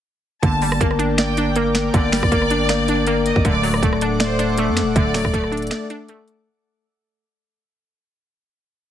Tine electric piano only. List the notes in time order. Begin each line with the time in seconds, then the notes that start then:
0.43 A#3
0.81 A#4
1.18 A#3
1.56 A#4
1.94 A#3
2.32 A#4
2.69 A#3
3.07 A#4
3.45 A3
3.83 A4
4.20 A3
4.58 A4
4.96 A3
5.34 A4
5.71 A3
6.09 A4